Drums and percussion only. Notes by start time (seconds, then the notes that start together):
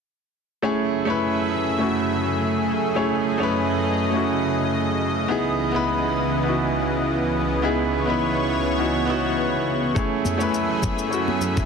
9.96 kick, shaker
10.25 mid tom, high conga, shaker
10.41 shaker
10.54 shaker
10.82 kick, high conga, low conga, shaker
10.99 shaker
11.13 shaker
11.28 high conga
11.41 low conga, shaker
11.57 kick, shaker